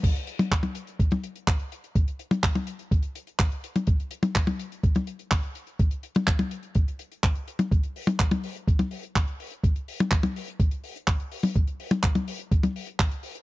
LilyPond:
\new DrumStaff \with { instrumentName = "Drums" } \drummode { \time 4/4 \tempo 4 = 125 <cymc hh bd>16 hh16 hh16 <hh tommh>16 <hc hh bd>16 <hh tommh>16 hh16 hh16 <hh bd>16 <hh tommh>16 hh16 hh16 <hc hh bd>16 hh16 hh16 hh16 | <hh bd>16 hh16 hh16 <hh tommh>16 <hc hh bd>16 <hh tommh>16 hh16 hh16 <hh bd>16 hh16 hh16 hh16 <hc hh bd>16 hh16 hh16 <hh tommh>16 | <hh bd>16 hh16 hh16 <hh tommh>16 <hc bd>16 <hh tommh>16 hh16 hh16 <hh bd>16 <hh tommh>16 hh16 hh16 <hc hh bd>16 hh16 hh16 hh16 | <hh bd>16 hh16 hh16 <hh tommh>16 <hc bd>16 <hh tommh>16 hh16 hh16 <hh bd>16 hh16 hh16 hh16 <hc hh bd>16 hh16 hh16 <hh tommh>16 |
<hh bd>16 hh16 hho16 <hh tommh>16 <hc hh bd>16 <hh tommh>16 hho16 hh16 <hh bd>16 <hh tommh>16 hho16 hh16 <hc hh bd>16 hh16 hho16 hh16 | <hh bd>16 hh16 hho16 <hh tommh>16 <hc hh bd>16 <hh tommh>16 hho16 hh16 <hh bd>16 hh16 hho16 hh16 <hc hh bd>16 hh16 hho16 <hho tommh>16 | <hh bd>16 hh16 hho16 <hh tommh>16 <hc hh bd>16 <hh tommh>16 hho16 hh16 <hh bd>16 <hh tommh>16 hho16 hh16 <hc hh bd>16 hh16 hho16 hh16 | }